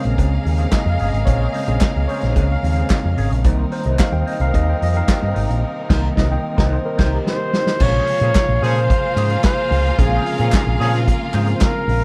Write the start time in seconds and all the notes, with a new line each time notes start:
Already playing: C#3 G#3 A#3 C4 G#4 A#4 C#5 D#5 F5
0.04 A#1 C#4 G#4 C5, closed hi-hat
0.17 C#2 C#4 G#4 C5, kick, closed hi-hat
0.31 muted clean electric guitar stroke
0.45 D#2, muted clean electric guitar stroke, open hi-hat
0.58 C#4 G#4 C5, closed hi-hat
0.72 D#5, kick, snare, clap, closed hi-hat
0.86 F2 F5, muted clean electric guitar stroke
0.99 G1 C#4 G#4 C#5, open hi-hat
1.09 G#1 D#5
1.13 muted clean electric guitar stroke, closed hi-hat
1.25 A#1 C#4 G#4 C5 C#5, kick, closed hi-hat
1.53 C#3 G#3 C4 C#4 G#4 C5 D#5, open hi-hat
1.66 A#1 C#4 G#4 C5, closed hi-hat
1.80 muted clean electric guitar stroke, kick, snare, clap, closed hi-hat
1.82 clap
1.95 C#2, muted clean electric guitar stroke
2.08 C#4 G#4 C5 C#5, open hi-hat
2.21 A#1 C#4 G#4 C5, snare, closed hi-hat
2.36 C#2 C#4 G#4 C5, kick, closed hi-hat
2.50 F5, muted clean electric guitar stroke
2.63 D#2 C#3 G#3 C4, muted clean electric guitar stroke, open hi-hat
2.72 F5, closed hi-hat
2.77 C#4 G#4 C5
2.90 muted clean electric guitar stroke, kick, snare, clap, closed hi-hat
3.04 F2, muted clean electric guitar stroke
3.17 G#1 C#4 G#4 C#5, open hi-hat
3.31 A#1, muted clean electric guitar stroke, closed hi-hat
3.44 C2 C3 D#3 G3 A#3 C4 D#4 A#4 C5, kick, closed hi-hat
3.71 D#4 A#4 C5, open hi-hat
3.84 C2 D#4 A#4 C5 D#5, closed hi-hat
3.99 F5, muted clean electric guitar stroke, kick, snare, clap, closed hi-hat
4.12 D#2 G5
4.26 D#4 A#4 C5 D#5, open hi-hat
4.40 C2 D#4 A#4 C5 F5, closed hi-hat
4.54 D#2 D#4 A#4 C5 D#5, kick, closed hi-hat
4.67 G5, muted clean electric guitar stroke
4.81 F2 D#5, muted clean electric guitar stroke, open hi-hat
4.94 D#4 A#4 C5 F5, closed hi-hat
5.08 muted clean electric guitar stroke, kick, snare, clap, closed hi-hat
5.22 G2 D#5
5.34 G#1 D#4 A#4 D#5, open hi-hat
5.48 A#1, muted clean electric guitar stroke, closed hi-hat
5.89 C2 D#3 G3 A#3 D#4 A#4 C5, kick, snare, crash
6.16 C2 D#4 A#4 C5 D#5, kick, snare
6.32 G5
6.57 C2 D#4 A#4 C5 D#5, kick, snare
6.73 C5
6.86 A#4
6.98 C2 D#4 A#4 C5, kick, snare, crash
7.14 G4
7.27 C5, snare
7.53 snare
7.67 snare
7.80 A#1 C#3 F3 G#3 A#3 C#4 F4 G#4 A#4 C5 C#5 F5, kick, crash
7.84 C3
8.07 muted clean electric guitar stroke, open hi-hat
8.20 A#2 F3 C#4 G#4 C5, closed hi-hat
8.35 kick, snare, clap, closed hi-hat
8.49 A#1
8.62 A#2 F3 C#4 G#4 C5 C#5, open hi-hat
8.76 C#4 C5, closed hi-hat
8.90 muted clean electric guitar stroke, kick, closed hi-hat
9.04 muted clean electric guitar stroke
9.16 G#2 C#4 G#4 C5, clap, open hi-hat
9.30 muted clean electric guitar stroke, closed hi-hat
9.44 C5, muted clean electric guitar stroke, kick, snare, clap, closed hi-hat
9.59 muted clean electric guitar stroke
9.71 C#2, open hi-hat
9.86 muted clean electric guitar stroke, closed hi-hat
9.99 A#1 C#3 F3 G#3 C4 C#4 G#4 C5, kick, closed hi-hat
10.08 C#4
10.26 muted clean electric guitar stroke, open hi-hat
10.38 A#2 F3 C#4 G#4 C5, closed hi-hat
10.52 muted clean electric guitar stroke, kick, snare, clap, closed hi-hat
10.54 clap
10.66 A#1, muted clean electric guitar stroke
10.79 A#2 F3 C#4 G#4 C#5, open hi-hat
10.93 C#4 G#4 C5, snare, closed hi-hat
11.07 muted clean electric guitar stroke, kick, closed hi-hat
11.21 muted clean electric guitar stroke
11.33 G#2 C#3 F3 G#3 A#3 C#4 G#4 C5, clap, open hi-hat
11.42 C4
11.47 muted clean electric guitar stroke, closed hi-hat
11.55 C5
11.61 A#4, muted clean electric guitar stroke, kick, snare, clap, closed hi-hat
11.75 muted clean electric guitar stroke
11.88 A#1, open hi-hat